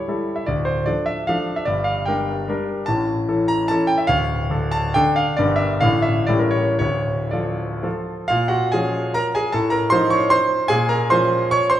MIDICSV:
0, 0, Header, 1, 2, 480
1, 0, Start_track
1, 0, Key_signature, -1, "minor"
1, 0, Tempo, 399734
1, 572, Time_signature, 3, 2, 24, 8
1, 3938, Tempo, 417827
1, 6338, Tempo, 461538
1, 7298, Tempo, 521286
1, 8738, Tempo, 460829
1, 9218, Tempo, 416956
1, 9219, Key_signature, -5, "minor"
1, 10178, Tempo, 390625
1, 13433, End_track
2, 0, Start_track
2, 0, Title_t, "Grand piano"
2, 0, Program_c, 0, 0
2, 0, Note_on_c, 0, 73, 72
2, 95, Note_on_c, 0, 55, 42
2, 102, Note_on_c, 0, 64, 39
2, 107, Note_on_c, 0, 69, 47
2, 428, Note_on_c, 0, 76, 56
2, 452, Note_off_c, 0, 73, 0
2, 522, Note_off_c, 0, 55, 0
2, 526, Note_off_c, 0, 64, 0
2, 528, Note_off_c, 0, 69, 0
2, 557, Note_on_c, 0, 74, 74
2, 558, Note_off_c, 0, 76, 0
2, 569, Note_on_c, 0, 26, 43
2, 577, Note_on_c, 0, 38, 52
2, 776, Control_c, 0, 64, 127
2, 781, Note_on_c, 0, 72, 72
2, 805, Note_off_c, 0, 74, 0
2, 1029, Note_on_c, 0, 74, 76
2, 1046, Note_on_c, 0, 53, 38
2, 1048, Note_off_c, 0, 26, 0
2, 1048, Note_off_c, 0, 72, 0
2, 1050, Note_on_c, 0, 62, 38
2, 1051, Note_on_c, 0, 69, 42
2, 1052, Note_off_c, 0, 38, 0
2, 1078, Control_c, 0, 64, 0
2, 1270, Note_on_c, 0, 76, 80
2, 1297, Note_off_c, 0, 74, 0
2, 1498, Note_off_c, 0, 53, 0
2, 1500, Note_off_c, 0, 62, 0
2, 1501, Note_off_c, 0, 69, 0
2, 1527, Note_on_c, 0, 77, 78
2, 1533, Note_off_c, 0, 76, 0
2, 1546, Note_on_c, 0, 53, 48
2, 1548, Note_on_c, 0, 62, 47
2, 1552, Note_on_c, 0, 69, 48
2, 1876, Note_on_c, 0, 76, 70
2, 1886, Note_off_c, 0, 77, 0
2, 1962, Note_off_c, 0, 53, 0
2, 1963, Note_off_c, 0, 62, 0
2, 1965, Note_off_c, 0, 69, 0
2, 1986, Note_on_c, 0, 74, 83
2, 2001, Note_off_c, 0, 76, 0
2, 2003, Note_on_c, 0, 31, 49
2, 2006, Note_on_c, 0, 43, 52
2, 2212, Note_on_c, 0, 77, 74
2, 2234, Note_off_c, 0, 74, 0
2, 2252, Control_c, 0, 64, 127
2, 2468, Note_on_c, 0, 79, 72
2, 2476, Note_off_c, 0, 31, 0
2, 2478, Note_off_c, 0, 43, 0
2, 2478, Note_off_c, 0, 77, 0
2, 2492, Note_on_c, 0, 55, 42
2, 2499, Note_on_c, 0, 70, 48
2, 2500, Note_on_c, 0, 62, 43
2, 2934, Note_off_c, 0, 55, 0
2, 2937, Note_off_c, 0, 70, 0
2, 2938, Note_off_c, 0, 62, 0
2, 2979, Note_on_c, 0, 55, 48
2, 2995, Note_on_c, 0, 62, 48
2, 2996, Control_c, 0, 64, 0
2, 2997, Note_on_c, 0, 70, 56
2, 3205, Note_off_c, 0, 79, 0
2, 3402, Note_off_c, 0, 55, 0
2, 3411, Note_off_c, 0, 62, 0
2, 3411, Note_off_c, 0, 70, 0
2, 3433, Note_on_c, 0, 81, 93
2, 3457, Note_on_c, 0, 45, 54
2, 3459, Note_on_c, 0, 33, 53
2, 3644, Control_c, 0, 64, 127
2, 3927, Note_off_c, 0, 45, 0
2, 3929, Note_off_c, 0, 33, 0
2, 3939, Note_on_c, 0, 61, 43
2, 3942, Note_on_c, 0, 52, 47
2, 3949, Note_on_c, 0, 69, 50
2, 4169, Note_on_c, 0, 82, 98
2, 4175, Note_off_c, 0, 81, 0
2, 4373, Note_off_c, 0, 61, 0
2, 4374, Note_off_c, 0, 52, 0
2, 4378, Note_off_c, 0, 69, 0
2, 4399, Note_on_c, 0, 81, 103
2, 4411, Note_off_c, 0, 82, 0
2, 4423, Note_on_c, 0, 52, 56
2, 4426, Note_on_c, 0, 61, 58
2, 4433, Note_on_c, 0, 69, 60
2, 4434, Control_c, 0, 64, 0
2, 4619, Note_on_c, 0, 79, 94
2, 4637, Note_off_c, 0, 81, 0
2, 4740, Note_on_c, 0, 76, 66
2, 4746, Note_off_c, 0, 79, 0
2, 4830, Note_off_c, 0, 52, 0
2, 4832, Note_off_c, 0, 61, 0
2, 4836, Note_off_c, 0, 69, 0
2, 4849, Note_on_c, 0, 77, 103
2, 4863, Note_off_c, 0, 76, 0
2, 4867, Note_on_c, 0, 38, 64
2, 4871, Note_on_c, 0, 26, 55
2, 5084, Control_c, 0, 64, 127
2, 5333, Note_off_c, 0, 38, 0
2, 5335, Note_off_c, 0, 26, 0
2, 5342, Note_on_c, 0, 62, 48
2, 5344, Note_on_c, 0, 50, 47
2, 5353, Note_on_c, 0, 69, 56
2, 5587, Note_on_c, 0, 81, 100
2, 5593, Note_off_c, 0, 77, 0
2, 5806, Note_off_c, 0, 50, 0
2, 5806, Note_off_c, 0, 62, 0
2, 5811, Note_off_c, 0, 69, 0
2, 5846, Note_off_c, 0, 81, 0
2, 5848, Note_on_c, 0, 79, 104
2, 5865, Note_on_c, 0, 62, 59
2, 5866, Note_on_c, 0, 50, 57
2, 5867, Note_on_c, 0, 69, 65
2, 5872, Control_c, 0, 64, 0
2, 6095, Note_off_c, 0, 79, 0
2, 6097, Note_on_c, 0, 77, 89
2, 6297, Note_off_c, 0, 62, 0
2, 6298, Note_off_c, 0, 50, 0
2, 6298, Note_off_c, 0, 69, 0
2, 6335, Note_on_c, 0, 74, 94
2, 6338, Note_off_c, 0, 77, 0
2, 6353, Note_on_c, 0, 43, 66
2, 6355, Note_on_c, 0, 31, 61
2, 6357, Note_on_c, 0, 50, 45
2, 6362, Note_on_c, 0, 62, 51
2, 6364, Note_on_c, 0, 70, 48
2, 6535, Note_on_c, 0, 76, 82
2, 6554, Control_c, 0, 64, 127
2, 6562, Note_off_c, 0, 74, 0
2, 6771, Note_off_c, 0, 50, 0
2, 6773, Note_off_c, 0, 62, 0
2, 6774, Note_off_c, 0, 70, 0
2, 6789, Note_off_c, 0, 76, 0
2, 6792, Note_on_c, 0, 77, 100
2, 6797, Note_off_c, 0, 43, 0
2, 6798, Note_off_c, 0, 31, 0
2, 6800, Note_on_c, 0, 50, 43
2, 6802, Note_on_c, 0, 45, 61
2, 6807, Note_on_c, 0, 33, 61
2, 6811, Note_on_c, 0, 62, 47
2, 6817, Control_c, 0, 64, 0
2, 6817, Note_on_c, 0, 69, 48
2, 7005, Control_c, 0, 64, 127
2, 7018, Note_on_c, 0, 76, 86
2, 7044, Note_off_c, 0, 77, 0
2, 7255, Note_off_c, 0, 50, 0
2, 7261, Note_off_c, 0, 62, 0
2, 7264, Note_off_c, 0, 69, 0
2, 7271, Note_off_c, 0, 33, 0
2, 7271, Note_on_c, 0, 74, 88
2, 7273, Note_off_c, 0, 45, 0
2, 7283, Note_off_c, 0, 76, 0
2, 7287, Note_on_c, 0, 33, 58
2, 7287, Note_on_c, 0, 55, 45
2, 7289, Note_on_c, 0, 45, 62
2, 7294, Note_on_c, 0, 64, 43
2, 7301, Note_on_c, 0, 69, 42
2, 7314, Control_c, 0, 64, 0
2, 7389, Note_on_c, 0, 70, 58
2, 7399, Note_off_c, 0, 74, 0
2, 7496, Note_on_c, 0, 73, 82
2, 7499, Control_c, 0, 64, 127
2, 7516, Note_off_c, 0, 70, 0
2, 7724, Note_off_c, 0, 55, 0
2, 7727, Note_off_c, 0, 64, 0
2, 7730, Note_off_c, 0, 69, 0
2, 7742, Note_off_c, 0, 73, 0
2, 7746, Note_off_c, 0, 33, 0
2, 7747, Note_off_c, 0, 45, 0
2, 7756, Note_on_c, 0, 73, 88
2, 7770, Note_on_c, 0, 26, 50
2, 7773, Note_on_c, 0, 38, 56
2, 7780, Control_c, 0, 64, 0
2, 8014, Control_c, 0, 64, 127
2, 8235, Note_on_c, 0, 74, 65
2, 8251, Note_off_c, 0, 26, 0
2, 8253, Note_off_c, 0, 38, 0
2, 8254, Note_on_c, 0, 53, 38
2, 8255, Note_on_c, 0, 65, 41
2, 8257, Note_on_c, 0, 69, 45
2, 8259, Note_off_c, 0, 73, 0
2, 8697, Note_off_c, 0, 53, 0
2, 8697, Note_off_c, 0, 65, 0
2, 8698, Note_off_c, 0, 69, 0
2, 8714, Note_on_c, 0, 53, 48
2, 8719, Note_on_c, 0, 65, 47
2, 8722, Note_on_c, 0, 69, 50
2, 8724, Note_off_c, 0, 74, 0
2, 8752, Control_c, 0, 64, 0
2, 9164, Note_off_c, 0, 53, 0
2, 9166, Note_off_c, 0, 65, 0
2, 9168, Note_off_c, 0, 69, 0
2, 9178, Note_on_c, 0, 77, 94
2, 9193, Note_on_c, 0, 65, 69
2, 9207, Note_on_c, 0, 46, 62
2, 9408, Note_on_c, 0, 78, 81
2, 9420, Note_off_c, 0, 65, 0
2, 9420, Note_on_c, 0, 66, 64
2, 9429, Note_off_c, 0, 77, 0
2, 9431, Control_c, 0, 64, 127
2, 9666, Note_off_c, 0, 66, 0
2, 9679, Note_off_c, 0, 46, 0
2, 9679, Note_off_c, 0, 78, 0
2, 9680, Note_on_c, 0, 80, 92
2, 9696, Note_on_c, 0, 68, 64
2, 9704, Note_on_c, 0, 53, 50
2, 9710, Note_on_c, 0, 61, 47
2, 9710, Note_on_c, 0, 65, 55
2, 10143, Note_off_c, 0, 68, 0
2, 10169, Note_off_c, 0, 80, 0
2, 10169, Note_on_c, 0, 82, 100
2, 10178, Note_on_c, 0, 70, 73
2, 10191, Control_c, 0, 64, 0
2, 10395, Note_off_c, 0, 70, 0
2, 10407, Note_off_c, 0, 82, 0
2, 10421, Note_on_c, 0, 80, 96
2, 10434, Note_on_c, 0, 68, 73
2, 10591, Note_off_c, 0, 53, 0
2, 10594, Note_off_c, 0, 61, 0
2, 10594, Note_off_c, 0, 65, 0
2, 10634, Note_off_c, 0, 68, 0
2, 10638, Note_on_c, 0, 81, 95
2, 10642, Note_off_c, 0, 80, 0
2, 10654, Note_on_c, 0, 45, 67
2, 10657, Note_on_c, 0, 69, 76
2, 10827, Control_c, 0, 64, 127
2, 10854, Note_on_c, 0, 82, 87
2, 10863, Note_off_c, 0, 69, 0
2, 10868, Note_off_c, 0, 81, 0
2, 10873, Note_on_c, 0, 70, 70
2, 11099, Note_on_c, 0, 84, 107
2, 11103, Note_off_c, 0, 70, 0
2, 11111, Note_off_c, 0, 82, 0
2, 11112, Note_off_c, 0, 45, 0
2, 11123, Note_on_c, 0, 53, 54
2, 11124, Note_on_c, 0, 72, 83
2, 11126, Note_on_c, 0, 63, 55
2, 11130, Note_on_c, 0, 65, 61
2, 11350, Note_on_c, 0, 85, 97
2, 11359, Note_off_c, 0, 72, 0
2, 11364, Note_off_c, 0, 84, 0
2, 11376, Note_on_c, 0, 73, 75
2, 11593, Note_on_c, 0, 84, 113
2, 11602, Note_off_c, 0, 73, 0
2, 11605, Note_off_c, 0, 85, 0
2, 11605, Note_on_c, 0, 72, 84
2, 11631, Control_c, 0, 64, 0
2, 12038, Note_off_c, 0, 53, 0
2, 12039, Note_off_c, 0, 63, 0
2, 12041, Note_off_c, 0, 65, 0
2, 12045, Note_off_c, 0, 72, 0
2, 12061, Note_on_c, 0, 80, 113
2, 12072, Note_off_c, 0, 84, 0
2, 12075, Note_on_c, 0, 68, 90
2, 12082, Note_on_c, 0, 46, 72
2, 12304, Note_off_c, 0, 68, 0
2, 12312, Control_c, 0, 64, 127
2, 12314, Note_on_c, 0, 82, 87
2, 12315, Note_off_c, 0, 80, 0
2, 12315, Note_on_c, 0, 70, 65
2, 12555, Note_off_c, 0, 70, 0
2, 12563, Note_off_c, 0, 46, 0
2, 12573, Note_off_c, 0, 82, 0
2, 12576, Note_on_c, 0, 84, 100
2, 12584, Note_on_c, 0, 72, 86
2, 12591, Note_on_c, 0, 53, 54
2, 12592, Note_on_c, 0, 61, 57
2, 12602, Note_on_c, 0, 65, 57
2, 13039, Note_off_c, 0, 72, 0
2, 13069, Note_off_c, 0, 84, 0
2, 13080, Note_on_c, 0, 85, 115
2, 13082, Control_c, 0, 64, 0
2, 13092, Note_on_c, 0, 73, 87
2, 13300, Note_off_c, 0, 73, 0
2, 13307, Note_on_c, 0, 84, 102
2, 13309, Note_off_c, 0, 85, 0
2, 13320, Note_on_c, 0, 72, 80
2, 13433, Note_off_c, 0, 53, 0
2, 13433, Note_off_c, 0, 61, 0
2, 13433, Note_off_c, 0, 65, 0
2, 13433, Note_off_c, 0, 72, 0
2, 13433, Note_off_c, 0, 84, 0
2, 13433, End_track
0, 0, End_of_file